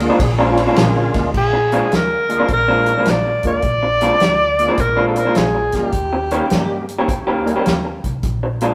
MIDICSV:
0, 0, Header, 1, 8, 480
1, 0, Start_track
1, 0, Tempo, 574713
1, 1119, Time_signature, 4, 2, 24, 8
1, 7300, End_track
2, 0, Start_track
2, 0, Title_t, "Tenor saxophone"
2, 0, Program_c, 0, 66
2, 1146, Note_on_c, 0, 68, 86
2, 1631, Note_on_c, 0, 70, 94
2, 1643, Note_off_c, 0, 68, 0
2, 2094, Note_off_c, 0, 70, 0
2, 2113, Note_on_c, 0, 70, 98
2, 2592, Note_on_c, 0, 74, 93
2, 2605, Note_off_c, 0, 70, 0
2, 2892, Note_off_c, 0, 74, 0
2, 2899, Note_on_c, 0, 74, 109
2, 4010, Note_on_c, 0, 70, 95
2, 4023, Note_off_c, 0, 74, 0
2, 4236, Note_off_c, 0, 70, 0
2, 4241, Note_on_c, 0, 69, 59
2, 4325, Note_on_c, 0, 70, 84
2, 4338, Note_off_c, 0, 69, 0
2, 4482, Note_on_c, 0, 68, 80
2, 4495, Note_off_c, 0, 70, 0
2, 4806, Note_on_c, 0, 67, 80
2, 4819, Note_off_c, 0, 68, 0
2, 5925, Note_off_c, 0, 67, 0
2, 7300, End_track
3, 0, Start_track
3, 0, Title_t, "Tonewheel organ"
3, 0, Program_c, 1, 16
3, 0, Note_on_c, 1, 68, 93
3, 4, Note_on_c, 1, 56, 89
3, 5, Note_on_c, 1, 58, 82
3, 12, Note_on_c, 1, 62, 80
3, 13, Note_on_c, 1, 65, 99
3, 148, Note_off_c, 1, 56, 0
3, 148, Note_off_c, 1, 58, 0
3, 152, Note_off_c, 1, 62, 0
3, 152, Note_off_c, 1, 65, 0
3, 316, Note_off_c, 1, 68, 0
3, 334, Note_on_c, 1, 61, 99
3, 341, Note_on_c, 1, 65, 115
3, 943, Note_off_c, 1, 65, 0
3, 949, Note_on_c, 1, 56, 83
3, 949, Note_on_c, 1, 58, 72
3, 951, Note_on_c, 1, 62, 76
3, 953, Note_on_c, 1, 65, 87
3, 1092, Note_off_c, 1, 61, 0
3, 1099, Note_off_c, 1, 56, 0
3, 1099, Note_off_c, 1, 58, 0
3, 1100, Note_off_c, 1, 62, 0
3, 1101, Note_off_c, 1, 65, 0
3, 1912, Note_on_c, 1, 58, 51
3, 1915, Note_on_c, 1, 56, 58
3, 1915, Note_on_c, 1, 62, 49
3, 1915, Note_on_c, 1, 65, 53
3, 1918, Note_on_c, 1, 68, 65
3, 2060, Note_off_c, 1, 58, 0
3, 2061, Note_off_c, 1, 56, 0
3, 2061, Note_off_c, 1, 62, 0
3, 2061, Note_off_c, 1, 65, 0
3, 2062, Note_off_c, 1, 68, 0
3, 2876, Note_on_c, 1, 65, 67
3, 2877, Note_on_c, 1, 56, 77
3, 2878, Note_on_c, 1, 62, 65
3, 2879, Note_on_c, 1, 58, 68
3, 2887, Note_on_c, 1, 70, 84
3, 3021, Note_off_c, 1, 65, 0
3, 3022, Note_off_c, 1, 56, 0
3, 3022, Note_off_c, 1, 62, 0
3, 3023, Note_off_c, 1, 58, 0
3, 3027, Note_off_c, 1, 70, 0
3, 3832, Note_on_c, 1, 56, 62
3, 3832, Note_on_c, 1, 62, 62
3, 3832, Note_on_c, 1, 65, 62
3, 3836, Note_on_c, 1, 58, 61
3, 3839, Note_on_c, 1, 68, 72
3, 3979, Note_off_c, 1, 62, 0
3, 3980, Note_off_c, 1, 56, 0
3, 3980, Note_off_c, 1, 65, 0
3, 3982, Note_off_c, 1, 58, 0
3, 3983, Note_off_c, 1, 68, 0
3, 4793, Note_on_c, 1, 55, 74
3, 4795, Note_on_c, 1, 61, 65
3, 4801, Note_on_c, 1, 58, 66
3, 4804, Note_on_c, 1, 63, 66
3, 4806, Note_on_c, 1, 65, 78
3, 4940, Note_off_c, 1, 55, 0
3, 4942, Note_off_c, 1, 61, 0
3, 4944, Note_off_c, 1, 58, 0
3, 4946, Note_off_c, 1, 63, 0
3, 4947, Note_off_c, 1, 65, 0
3, 5430, Note_on_c, 1, 55, 59
3, 5433, Note_on_c, 1, 61, 53
3, 5434, Note_on_c, 1, 58, 57
3, 5438, Note_on_c, 1, 63, 53
3, 5442, Note_on_c, 1, 67, 64
3, 5721, Note_off_c, 1, 55, 0
3, 5722, Note_off_c, 1, 61, 0
3, 5723, Note_off_c, 1, 58, 0
3, 5725, Note_off_c, 1, 63, 0
3, 5727, Note_off_c, 1, 67, 0
3, 6227, Note_on_c, 1, 55, 65
3, 6228, Note_on_c, 1, 58, 59
3, 6232, Note_on_c, 1, 63, 59
3, 6235, Note_on_c, 1, 70, 75
3, 6236, Note_on_c, 1, 61, 63
3, 6379, Note_off_c, 1, 55, 0
3, 6380, Note_off_c, 1, 58, 0
3, 6382, Note_off_c, 1, 63, 0
3, 6383, Note_off_c, 1, 61, 0
3, 6383, Note_off_c, 1, 70, 0
3, 7300, End_track
4, 0, Start_track
4, 0, Title_t, "Horn section"
4, 0, Program_c, 2, 61
4, 644, Note_on_c, 2, 50, 78
4, 644, Note_on_c, 2, 58, 79
4, 646, Note_on_c, 2, 68, 95
4, 1121, Note_off_c, 2, 50, 0
4, 1121, Note_off_c, 2, 58, 0
4, 1122, Note_off_c, 2, 68, 0
4, 7300, End_track
5, 0, Start_track
5, 0, Title_t, "Clean electric guitar"
5, 0, Program_c, 3, 27
5, 80, Note_on_c, 3, 62, 80
5, 83, Note_on_c, 3, 56, 78
5, 87, Note_on_c, 3, 53, 72
5, 90, Note_on_c, 3, 46, 69
5, 151, Note_off_c, 3, 46, 0
5, 154, Note_off_c, 3, 53, 0
5, 156, Note_off_c, 3, 56, 0
5, 158, Note_off_c, 3, 62, 0
5, 322, Note_on_c, 3, 62, 95
5, 324, Note_on_c, 3, 56, 90
5, 327, Note_on_c, 3, 53, 80
5, 328, Note_on_c, 3, 46, 71
5, 504, Note_off_c, 3, 62, 0
5, 505, Note_off_c, 3, 56, 0
5, 507, Note_off_c, 3, 46, 0
5, 507, Note_off_c, 3, 53, 0
5, 554, Note_on_c, 3, 62, 88
5, 556, Note_on_c, 3, 56, 89
5, 561, Note_on_c, 3, 53, 79
5, 563, Note_on_c, 3, 46, 64
5, 685, Note_off_c, 3, 62, 0
5, 686, Note_off_c, 3, 56, 0
5, 689, Note_off_c, 3, 53, 0
5, 690, Note_off_c, 3, 46, 0
5, 1440, Note_on_c, 3, 46, 69
5, 1445, Note_on_c, 3, 53, 76
5, 1448, Note_on_c, 3, 56, 83
5, 1450, Note_on_c, 3, 62, 87
5, 1543, Note_off_c, 3, 46, 0
5, 1546, Note_off_c, 3, 53, 0
5, 1547, Note_off_c, 3, 56, 0
5, 1548, Note_off_c, 3, 62, 0
5, 2001, Note_on_c, 3, 62, 76
5, 2003, Note_on_c, 3, 56, 68
5, 2008, Note_on_c, 3, 53, 72
5, 2011, Note_on_c, 3, 46, 58
5, 2068, Note_off_c, 3, 46, 0
5, 2070, Note_off_c, 3, 53, 0
5, 2073, Note_off_c, 3, 56, 0
5, 2080, Note_off_c, 3, 62, 0
5, 2238, Note_on_c, 3, 62, 77
5, 2243, Note_on_c, 3, 56, 72
5, 2245, Note_on_c, 3, 53, 63
5, 2248, Note_on_c, 3, 46, 59
5, 2420, Note_off_c, 3, 62, 0
5, 2423, Note_off_c, 3, 53, 0
5, 2423, Note_off_c, 3, 56, 0
5, 2425, Note_off_c, 3, 46, 0
5, 2483, Note_on_c, 3, 62, 69
5, 2486, Note_on_c, 3, 56, 63
5, 2490, Note_on_c, 3, 53, 64
5, 2493, Note_on_c, 3, 46, 61
5, 2608, Note_off_c, 3, 62, 0
5, 2610, Note_off_c, 3, 56, 0
5, 2611, Note_off_c, 3, 53, 0
5, 2613, Note_off_c, 3, 46, 0
5, 3355, Note_on_c, 3, 46, 78
5, 3361, Note_on_c, 3, 53, 86
5, 3363, Note_on_c, 3, 56, 79
5, 3369, Note_on_c, 3, 62, 93
5, 3460, Note_off_c, 3, 46, 0
5, 3463, Note_off_c, 3, 53, 0
5, 3464, Note_off_c, 3, 56, 0
5, 3467, Note_off_c, 3, 62, 0
5, 3912, Note_on_c, 3, 62, 69
5, 3917, Note_on_c, 3, 56, 73
5, 3920, Note_on_c, 3, 53, 61
5, 3923, Note_on_c, 3, 46, 52
5, 3982, Note_off_c, 3, 46, 0
5, 3986, Note_off_c, 3, 53, 0
5, 3988, Note_off_c, 3, 62, 0
5, 3989, Note_off_c, 3, 56, 0
5, 4148, Note_on_c, 3, 62, 79
5, 4151, Note_on_c, 3, 56, 75
5, 4154, Note_on_c, 3, 53, 71
5, 4159, Note_on_c, 3, 46, 69
5, 4336, Note_off_c, 3, 62, 0
5, 4337, Note_off_c, 3, 56, 0
5, 4338, Note_off_c, 3, 53, 0
5, 4341, Note_off_c, 3, 46, 0
5, 4384, Note_on_c, 3, 62, 70
5, 4388, Note_on_c, 3, 56, 65
5, 4390, Note_on_c, 3, 53, 64
5, 4392, Note_on_c, 3, 46, 63
5, 4519, Note_off_c, 3, 62, 0
5, 4521, Note_off_c, 3, 56, 0
5, 4522, Note_off_c, 3, 53, 0
5, 4523, Note_off_c, 3, 46, 0
5, 5275, Note_on_c, 3, 51, 74
5, 5280, Note_on_c, 3, 61, 82
5, 5281, Note_on_c, 3, 58, 80
5, 5284, Note_on_c, 3, 67, 82
5, 5381, Note_off_c, 3, 51, 0
5, 5384, Note_off_c, 3, 58, 0
5, 5384, Note_off_c, 3, 61, 0
5, 5386, Note_off_c, 3, 67, 0
5, 5834, Note_on_c, 3, 67, 73
5, 5836, Note_on_c, 3, 61, 67
5, 5841, Note_on_c, 3, 58, 63
5, 5845, Note_on_c, 3, 51, 60
5, 5909, Note_off_c, 3, 51, 0
5, 5909, Note_off_c, 3, 58, 0
5, 5913, Note_off_c, 3, 61, 0
5, 5915, Note_off_c, 3, 67, 0
5, 6071, Note_on_c, 3, 67, 88
5, 6076, Note_on_c, 3, 61, 69
5, 6080, Note_on_c, 3, 58, 71
5, 6083, Note_on_c, 3, 51, 71
5, 6259, Note_off_c, 3, 67, 0
5, 6261, Note_off_c, 3, 61, 0
5, 6263, Note_off_c, 3, 58, 0
5, 6264, Note_off_c, 3, 51, 0
5, 6312, Note_on_c, 3, 67, 79
5, 6315, Note_on_c, 3, 61, 74
5, 6319, Note_on_c, 3, 51, 60
5, 6319, Note_on_c, 3, 58, 70
5, 6445, Note_off_c, 3, 67, 0
5, 6446, Note_off_c, 3, 61, 0
5, 6448, Note_off_c, 3, 51, 0
5, 6448, Note_off_c, 3, 58, 0
5, 7197, Note_on_c, 3, 46, 69
5, 7201, Note_on_c, 3, 53, 76
5, 7205, Note_on_c, 3, 56, 83
5, 7209, Note_on_c, 3, 62, 87
5, 7300, Note_off_c, 3, 46, 0
5, 7300, Note_off_c, 3, 53, 0
5, 7300, Note_off_c, 3, 56, 0
5, 7300, Note_off_c, 3, 62, 0
5, 7300, End_track
6, 0, Start_track
6, 0, Title_t, "Upright bass"
6, 0, Program_c, 4, 32
6, 165, Note_on_c, 4, 34, 97
6, 537, Note_off_c, 4, 34, 0
6, 643, Note_on_c, 4, 34, 92
6, 889, Note_off_c, 4, 34, 0
6, 957, Note_on_c, 4, 38, 90
6, 1084, Note_off_c, 4, 38, 0
6, 1121, Note_on_c, 4, 34, 87
6, 1494, Note_off_c, 4, 34, 0
6, 1601, Note_on_c, 4, 38, 75
6, 1974, Note_off_c, 4, 38, 0
6, 2079, Note_on_c, 4, 34, 84
6, 2452, Note_off_c, 4, 34, 0
6, 2559, Note_on_c, 4, 34, 77
6, 2806, Note_off_c, 4, 34, 0
6, 2869, Note_on_c, 4, 38, 76
6, 2998, Note_off_c, 4, 38, 0
6, 3034, Note_on_c, 4, 34, 82
6, 3410, Note_off_c, 4, 34, 0
6, 3519, Note_on_c, 4, 38, 82
6, 3893, Note_off_c, 4, 38, 0
6, 3994, Note_on_c, 4, 34, 79
6, 4370, Note_off_c, 4, 34, 0
6, 4485, Note_on_c, 4, 34, 78
6, 4731, Note_off_c, 4, 34, 0
6, 4787, Note_on_c, 4, 38, 79
6, 4917, Note_off_c, 4, 38, 0
6, 4956, Note_on_c, 4, 39, 88
6, 5332, Note_off_c, 4, 39, 0
6, 5441, Note_on_c, 4, 43, 80
6, 5815, Note_off_c, 4, 43, 0
6, 5918, Note_on_c, 4, 39, 83
6, 6294, Note_off_c, 4, 39, 0
6, 6400, Note_on_c, 4, 39, 81
6, 6649, Note_off_c, 4, 39, 0
6, 6717, Note_on_c, 4, 36, 83
6, 6845, Note_off_c, 4, 36, 0
6, 6876, Note_on_c, 4, 34, 83
6, 7254, Note_off_c, 4, 34, 0
6, 7300, End_track
7, 0, Start_track
7, 0, Title_t, "Muted clean electric guitar strokes"
7, 161, Note_on_c, 9, 29, 53
7, 245, Note_off_c, 9, 29, 0
7, 804, Note_on_c, 9, 29, 49
7, 888, Note_off_c, 9, 29, 0
7, 1278, Note_on_c, 9, 29, 46
7, 1362, Note_off_c, 9, 29, 0
7, 1604, Note_on_c, 9, 29, 42
7, 1687, Note_off_c, 9, 29, 0
7, 2078, Note_on_c, 9, 29, 42
7, 2161, Note_off_c, 9, 29, 0
7, 2726, Note_on_c, 9, 29, 42
7, 2809, Note_off_c, 9, 29, 0
7, 3196, Note_on_c, 9, 29, 48
7, 3279, Note_off_c, 9, 29, 0
7, 3524, Note_on_c, 9, 29, 40
7, 3607, Note_off_c, 9, 29, 0
7, 3992, Note_on_c, 9, 29, 44
7, 4075, Note_off_c, 9, 29, 0
7, 4632, Note_on_c, 9, 29, 49
7, 4716, Note_off_c, 9, 29, 0
7, 5117, Note_on_c, 9, 29, 45
7, 5200, Note_off_c, 9, 29, 0
7, 5438, Note_on_c, 9, 29, 45
7, 5521, Note_off_c, 9, 29, 0
7, 5919, Note_on_c, 9, 29, 45
7, 6003, Note_off_c, 9, 29, 0
7, 6557, Note_on_c, 9, 29, 39
7, 6641, Note_off_c, 9, 29, 0
7, 7042, Note_on_c, 9, 29, 45
7, 7126, Note_off_c, 9, 29, 0
7, 7300, End_track
8, 0, Start_track
8, 0, Title_t, "Drums"
8, 2, Note_on_c, 9, 51, 68
8, 86, Note_off_c, 9, 51, 0
8, 162, Note_on_c, 9, 36, 118
8, 165, Note_on_c, 9, 51, 98
8, 246, Note_off_c, 9, 36, 0
8, 248, Note_off_c, 9, 51, 0
8, 479, Note_on_c, 9, 51, 68
8, 563, Note_off_c, 9, 51, 0
8, 638, Note_on_c, 9, 51, 86
8, 649, Note_on_c, 9, 38, 117
8, 721, Note_off_c, 9, 51, 0
8, 732, Note_off_c, 9, 38, 0
8, 953, Note_on_c, 9, 51, 66
8, 957, Note_on_c, 9, 36, 84
8, 964, Note_on_c, 9, 38, 34
8, 1037, Note_off_c, 9, 51, 0
8, 1040, Note_off_c, 9, 36, 0
8, 1048, Note_off_c, 9, 38, 0
8, 1120, Note_on_c, 9, 36, 99
8, 1121, Note_on_c, 9, 49, 83
8, 1203, Note_off_c, 9, 36, 0
8, 1205, Note_off_c, 9, 49, 0
8, 1436, Note_on_c, 9, 42, 52
8, 1519, Note_off_c, 9, 42, 0
8, 1601, Note_on_c, 9, 42, 71
8, 1612, Note_on_c, 9, 38, 90
8, 1685, Note_off_c, 9, 42, 0
8, 1695, Note_off_c, 9, 38, 0
8, 1918, Note_on_c, 9, 42, 50
8, 2001, Note_off_c, 9, 42, 0
8, 2074, Note_on_c, 9, 42, 73
8, 2077, Note_on_c, 9, 36, 103
8, 2158, Note_off_c, 9, 42, 0
8, 2161, Note_off_c, 9, 36, 0
8, 2390, Note_on_c, 9, 42, 52
8, 2473, Note_off_c, 9, 42, 0
8, 2551, Note_on_c, 9, 42, 75
8, 2562, Note_on_c, 9, 38, 94
8, 2635, Note_off_c, 9, 42, 0
8, 2645, Note_off_c, 9, 38, 0
8, 2864, Note_on_c, 9, 42, 55
8, 2870, Note_on_c, 9, 36, 73
8, 2948, Note_off_c, 9, 42, 0
8, 2954, Note_off_c, 9, 36, 0
8, 3026, Note_on_c, 9, 42, 66
8, 3032, Note_on_c, 9, 36, 91
8, 3109, Note_off_c, 9, 42, 0
8, 3115, Note_off_c, 9, 36, 0
8, 3346, Note_on_c, 9, 42, 55
8, 3430, Note_off_c, 9, 42, 0
8, 3508, Note_on_c, 9, 42, 78
8, 3519, Note_on_c, 9, 38, 94
8, 3592, Note_off_c, 9, 42, 0
8, 3602, Note_off_c, 9, 38, 0
8, 3831, Note_on_c, 9, 42, 58
8, 3915, Note_off_c, 9, 42, 0
8, 3988, Note_on_c, 9, 42, 84
8, 3992, Note_on_c, 9, 36, 102
8, 4072, Note_off_c, 9, 42, 0
8, 4076, Note_off_c, 9, 36, 0
8, 4308, Note_on_c, 9, 42, 61
8, 4391, Note_off_c, 9, 42, 0
8, 4468, Note_on_c, 9, 42, 81
8, 4478, Note_on_c, 9, 38, 100
8, 4551, Note_off_c, 9, 42, 0
8, 4562, Note_off_c, 9, 38, 0
8, 4779, Note_on_c, 9, 42, 60
8, 4788, Note_on_c, 9, 36, 72
8, 4790, Note_on_c, 9, 38, 30
8, 4863, Note_off_c, 9, 42, 0
8, 4871, Note_off_c, 9, 36, 0
8, 4874, Note_off_c, 9, 38, 0
8, 4947, Note_on_c, 9, 42, 74
8, 4952, Note_on_c, 9, 36, 89
8, 5031, Note_off_c, 9, 42, 0
8, 5035, Note_off_c, 9, 36, 0
8, 5268, Note_on_c, 9, 42, 54
8, 5351, Note_off_c, 9, 42, 0
8, 5429, Note_on_c, 9, 42, 79
8, 5440, Note_on_c, 9, 38, 97
8, 5513, Note_off_c, 9, 42, 0
8, 5524, Note_off_c, 9, 38, 0
8, 5751, Note_on_c, 9, 42, 52
8, 5834, Note_off_c, 9, 42, 0
8, 5916, Note_on_c, 9, 36, 101
8, 5918, Note_on_c, 9, 42, 79
8, 5999, Note_off_c, 9, 36, 0
8, 6002, Note_off_c, 9, 42, 0
8, 6240, Note_on_c, 9, 42, 52
8, 6324, Note_off_c, 9, 42, 0
8, 6395, Note_on_c, 9, 42, 73
8, 6405, Note_on_c, 9, 38, 107
8, 6478, Note_off_c, 9, 42, 0
8, 6489, Note_off_c, 9, 38, 0
8, 6714, Note_on_c, 9, 42, 56
8, 6715, Note_on_c, 9, 36, 73
8, 6798, Note_off_c, 9, 42, 0
8, 6799, Note_off_c, 9, 36, 0
8, 6874, Note_on_c, 9, 42, 70
8, 6876, Note_on_c, 9, 36, 98
8, 6957, Note_off_c, 9, 42, 0
8, 6960, Note_off_c, 9, 36, 0
8, 7188, Note_on_c, 9, 42, 53
8, 7271, Note_off_c, 9, 42, 0
8, 7300, End_track
0, 0, End_of_file